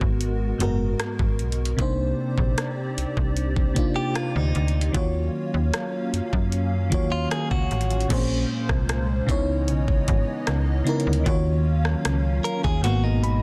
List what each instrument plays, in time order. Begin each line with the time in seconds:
Already playing: fm electric piano G#2 G#3 B3 F#4 A#4, analog synth pad G#3 B3 F#4 A#4
0.01 fm bass G#1, kick
0.21 closed hi-hat
0.58 fm bass F#1, fm electric piano G#2 G#3 B3 F#4, closed hi-hat
0.63 fm electric piano A#4
1.00 cross-stick, closed hi-hat
1.19 fm bass G#1, kick
1.39 fm bass B1, closed hi-hat
1.52 closed hi-hat
1.65 closed hi-hat
1.77 fm bass C2, fm electric piano C3 A#3 D4 D#4, analog synth pad C4 G4 D5, kick, closed hi-hat
1.81 fm electric piano C5
2.38 fm bass A#1, kick
2.58 cross-stick, closed hi-hat
2.98 fm bass C2, closed hi-hat
3.17 fm bass C2, kick
3.37 closed hi-hat
3.56 kick
3.74 fm electric piano C3 A#3 D4 D#4, kick, closed hi-hat
3.78 fm electric piano F4
3.96 clean electric guitar G4
4.15 clean electric guitar F4, cross-stick, closed hi-hat
4.35 fm bass D2, clean electric guitar D#4
4.55 fm bass D2, closed hi-hat
4.68 closed hi-hat
4.81 closed hi-hat
4.92 fm bass D#2, fm electric piano D#3 A#3 F4 F#4, analog synth pad F#3 A#3 C#4 F5, kick, closed hi-hat
4.97 fm electric piano C#5
5.54 fm bass D#2
5.74 cross-stick, closed hi-hat
6.13 fm bass F#2, closed hi-hat
6.33 fm bass F#2, kick
6.52 closed hi-hat
6.90 fm bass D#2, fm electric piano D#3 A#3 F4 F#4, kick, closed hi-hat
6.94 fm electric piano C#5
7.12 clean electric guitar F4
7.31 clean electric guitar G#4, cross-stick, closed hi-hat
7.51 fm bass C#2, clean electric guitar F#4, kick
7.71 fm bass A1, closed hi-hat
7.81 closed hi-hat
7.91 closed hi-hat
8.01 closed hi-hat
8.08 fm bass A#1, fm electric piano A#2 A#3 C4 G#4, analog synth pad G#3 A#3 C#4 F4 C5, kick, closed hi-hat, crash
8.13 fm electric piano C5
8.17 fm electric piano C#4
8.69 fm bass C2, kick, cross-stick
8.89 cross-stick, closed hi-hat
9.27 fm bass C#2, fm electric piano C#3 B3 D#4 E4, analog synth pad E3 B3 D#5, kick, closed hi-hat
9.31 fm electric piano C#5
9.68 fm bass B1, closed hi-hat
9.88 kick
10.08 fm bass G#1, kick, closed hi-hat
10.47 fm bass C#2, cross-stick, closed hi-hat
10.84 fm electric piano C#3 B3 D#4 E4, closed hi-hat
10.89 fm electric piano A#4
11.00 closed hi-hat
11.07 fm bass D2
11.13 closed hi-hat
11.24 fm bass D#2, fm electric piano D#3 A#3 F4 F#4, analog synth pad D#3 F#3 C#4 F5, kick, closed hi-hat
11.28 fm electric piano C#5
11.85 cross-stick
12.05 fm bass C#2, cross-stick, closed hi-hat
12.44 clean electric guitar A#4, closed hi-hat
12.64 fm bass D#2, clean electric guitar G#4, kick
12.82 fm bass G#1, fm electric piano G#2 G#3 B3 F#4, analog synth pad B2 G#3 F#4, clean electric guitar F#4, closed hi-hat
12.86 fm electric piano A#3
13.04 clean electric guitar D#4
13.23 fm electric piano B5, closed hi-hat